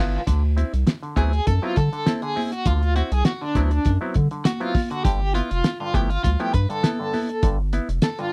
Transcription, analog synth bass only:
0.00 0.18 G1 medium
0.27 0.64 D2 loud
0.74 0.85 C2 medium
1.17 1.41 D2 medium
1.47 1.60 F#2 loud
1.77 1.89 D3 loud
2.66 3.02 D2 loud
3.12 3.23 C2 loud
3.56 3.79 D2 medium
3.86 3.98 F#2 loud
4.16 4.28 D3 medium
5.05 5.41 G1 loud
5.51 5.62 F1 loud
5.94 6.18 G1 medium
6.25 6.37 D2 medium
6.54 6.67 G2 loud
7.43 7.80 G1 loud
7.89 8.00 F1 loud

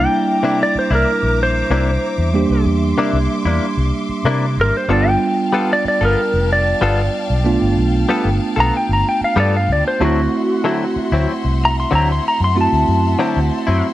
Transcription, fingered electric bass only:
0.75 muted fingered electric bass stroke soft
0.90 1.03 C2 medium
1.23 1.62 A#1 medium
1.70 1.96 C2 loud
2.18 2.44 E2 medium
2.50 2.63 C2 medium
2.65 2.92 E2 loud
3.13 3.26 C2 medium
3.45 3.58 E2 medium
3.77 3.90 C2 medium
4.09 muted fingered electric bass stroke soft
4.24 4.58 C3 loud
4.57 4.70 G#1 medium
4.88 5.15 G1 medium
5.85 muted fingered electric bass stroke soft
6.01 6.14 G1 medium
6.34 6.73 F1 medium
6.82 7.08 G1 loud
7.30 7.56 B1 medium
7.62 7.74 G1 medium
7.77 8.03 B1 medium
8.25 8.38 G1 medium
8.57 8.70 B1 medium
8.89 9.02 G1 medium
9.21 muted fingered electric bass stroke soft
9.36 9.70 G2 medium
9.68 9.82 D2 medium
10.00 10.27 D2 medium
10.96 muted fingered electric bass stroke soft
11.12 11.25 D2 medium
11.44 11.84 C2 medium
11.92 12.18 D2 loud
12.40 12.66 F#2 medium
12.72 12.85 D2 medium
12.88 13.14 F#2 medium
13.36 13.49 D2 medium
13.68 13.81 F#2 medium

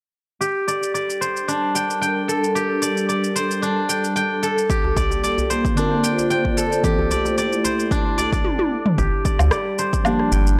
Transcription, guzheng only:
0.41 2.55 G4 medium
0.68 0.94 D5 medium
0.94 2.79 D5 medium
1.21 3.19 C5 medium
1.48 3.62 D4 medium
1.75 2.01 G5 medium
2.01 3.57 G5 medium
2.28 4.42 A4 medium
2.55 4.69 G4 medium
2.82 3.08 D5 medium
3.09 4.93 D5 medium
3.36 5.33 C5 medium
3.62 5.76 D4 medium
3.89 4.15 G5 medium
4.16 5.71 G5 medium
4.43 6.57 A4 medium
4.70 6.84 G4 medium
4.96 5.23 D5 medium
5.23 7.08 D5 medium
5.50 7.48 C5 medium
5.77 7.91 D4 medium
6.03 6.30 G5 medium
6.30 7.86 G5 medium
6.57 8.77 A4 medium
6.84 8.98 G4 medium
7.11 7.37 D5 medium
7.38 8.17 D5 medium
7.64 9.62 C5 medium
7.91 10.05 D4 medium
8.18 8.32 D5 medium
8.32 9.24 D5 medium
8.98 10.60 G4 medium
9.25 9.51 D5 medium
9.52 10.60 D5 medium
9.79 10.60 C5 medium
10.05 10.60 D4 medium
10.32 10.58 G5 medium

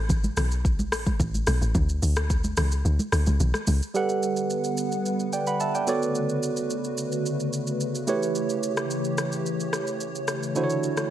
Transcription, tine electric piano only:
3.94 5.83 G3 medium
3.94 5.84 G4 medium
3.94 5.84 A4 medium
3.94 5.84 B4 medium
3.94 5.04 F#5 medium
5.33 5.47 D5 medium
5.33 5.46 G5 medium
5.47 5.60 F#5 medium
5.47 5.60 B5 medium
5.60 5.74 E5 medium
5.60 5.74 A5 medium
5.75 5.88 D5 medium
5.75 6.01 G5 medium
5.87 8.04 B3 medium
5.87 8.04 F#4 medium
5.87 8.04 A4 medium
5.87 8.04 C#5 medium
5.87 8.05 D5 medium
8.07 10.24 A3 medium
8.07 10.24 E4 medium
8.07 10.24 G4 medium
8.07 10.25 B4 medium
8.07 10.25 C#5 medium
10.55 11.10 D3 medium
10.55 11.10 D4 medium
10.55 11.10 E4 medium
10.55 11.10 F#4 medium
10.55 10.63 C5 medium
10.64 11.10 C#5 medium

